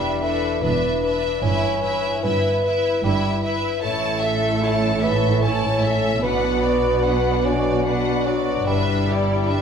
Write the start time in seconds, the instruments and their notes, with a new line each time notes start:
Already playing: double bass section E1, cello section E2, harp E2 D4 G4, bassoon G3, viola section D4, french horn section D4 E4, violin section B4 E5
0.22 bassoon A3, viola section D4, violin section B4 E5, harp B4
0.62 double bass section E1, cello section E2, bassoon B3, viola section D4, harp D4, violin section B4 E5
1.03 viola section D4, harp B4, violin section B4 E5
1.42 double bass section G1, cello section G2, harp G2, bassoon C#4, viola section E4, french horn section E4, violin section B4 E5
1.83 harp E4, viola section E4, violin section B4 E5
2.22 double bass section G1, cello section G2, harp G3, bassoon B3, viola section E4, violin section B4 E5
2.63 viola section E4, violin section B4 E5, harp B4
3.03 double bass section G1, cello section G2, bassoon G3, harp E4, viola section E4, violin section B4 E5
3.43 viola section E4, violin section B4 E5, harp B4
3.82 double bass section A1, harp A2, cello section A2, bassoon A3, french horn section C#4 E4, viola section E4, violin section C#5 A5
4.21 harp A4, viola section A4, violin section E5
4.62 harp E4, viola section E4, violin section C#5 A5
5.02 bassoon B3, viola section A4, harp C#5, violin section E5
5.42 bassoon C#4, harp E4, viola section E4, violin section C#5 A5
5.83 viola section A4, harp C#5, violin section E5
6.22 double bass section B1, harp B2, cello section B2, bassoon B3, french horn section D4 F#4, viola section D4, violin section B4 F#5
6.64 harp F#4, viola section F#4, violin section D5
7.04 harp D4, viola section D4, violin section B4 F#5
7.45 bassoon C#4, viola section F#4, harp B4, violin section D5
7.86 viola section D4, bassoon D4, harp D4, violin section B4 F#5
8.26 bassoon F#3, viola section F#4, harp B4, violin section D5
8.67 double bass section G1, harp G2, cello section G2, bassoon G3, viola section D4, french horn section E4, violin section B4 E5
9.09 harp E4, viola section E4, violin section G4 D5
9.49 harp D4, viola section D4, violin section B4 E5